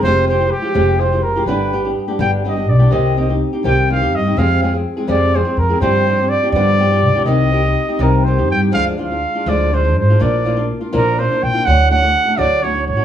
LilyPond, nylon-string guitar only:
\new Staff \with { instrumentName = "Nylon-string guitar" } { \time 6/8 \key c \minor \tempo 4. = 83 <f, c f aes f' g'>8 <f aes f' g'>16 <f aes f' g'>8 <f aes f' g'>16 <f, c f aes f' g'>8 <f aes f' g'>16 <f aes f' g'>8 <f aes f' g'>16 | <g, d g b d' g'>8 <g b d' g'>16 <g b d' g'>8 <g b d' g'>16 <g, d g b d' g'>8 <g b d' g'>16 <g b d' g'>8 <g b d' g'>16 | <c ees c' ees' g'>8 <ees c' ees' g'>16 <c' ees' g'>8 <c' ees' g'>16 <c ees c' ees' g'>8 <ees c' ees' g'>16 <c' ees' g'>8 <c' ees' g'>16 | <f, c f aes c' aes'>8 <f aes c' aes'>16 <f aes c' aes'>8 <f aes c' aes'>16 <f, c f aes c' aes'>8 <f aes c' aes'>16 <f aes c' aes'>8 <f aes c' aes'>16 |
<g, d f c' d' g'>8 <f c' d' g'>16 <f c' d' g'>8 <f c' d' g'>16 <g, d f b d' g'>8 <f b d' g'>16 <f b d' g'>8 <f b d' g'>16 | <c ees c' ees' g'>8 <ees c' ees' g'>16 g'8 <c' ees' g'>16 <c ees c' ees' g'>8 <ees c' ees' g'>16 <c' ees' g'>8 <c' ees' g'>16 | <d f aes d' f'>8 <f aes d' f'>16 <aes d' f'>8 <aes d' f'>16 <d f aes d' f'>8 <f aes d' f'>16 <aes d' f'>8 <aes d' f'>16 | <bes, f bes d' f'>8 <f bes d' f'>16 <bes d' f'>8 <bes d' f'>16 <bes, f bes d' f'>8 <f bes d' f'>16 <bes d' f'>8 <bes d' f'>16 |
<d fis a d' fis'>8 <fis a d' fis'>16 <a d' fis'>8 <a d' fis'>16 <d fis a d' fis'>8 <fis a d' fis'>16 <a d' fis'>8 <a d' fis'>16 | }